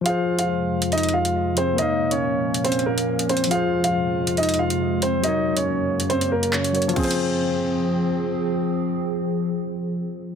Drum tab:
CC |------------------------------------------------------------------------------------------------|------------------------------------------------------------------------------------------------|------------------------------------------------------------------------------------------------|------------------------------------------------------------------------------------------------|
HH |x-----------------x-----------------------x-----x--x--x--x--------x-----------------x-----------|x-----------------x-----------------------x-----x---x---x---------x-----------x-----x---x---x---|x-----------------x-----------------------x-----x--x--x--x--------x-----------------x-----------|x-----------------x-----------------------x-----x-----x-----------x-----------x-----x---x---x---|
CP |------------------------------------------------------------------------------------------------|------------------------------------------------------------------------------------------------|------------------------------------------------------------------------------------------------|------------------------------------------------------------------------x-----------------------|
BD |------------------------------------------------------------------------------------------------|------------------------------------------------------------------------------------------------|------------------------------------------------------------------------------------------------|------------------------------------------------------------------------------------------------|

CC |x-----------------------------------------------------------------------------------------------|------------------------------------------------------------------------------------------------|
HH |x---x---x---------------------------------------------------------------------------------------|------------------------------------------------------------------------------------------------|
CP |------------------------------------------------------------------------------------------------|------------------------------------------------------------------------------------------------|
BD |o-----------------------------------------------------------------------------------------------|------------------------------------------------------------------------------------------------|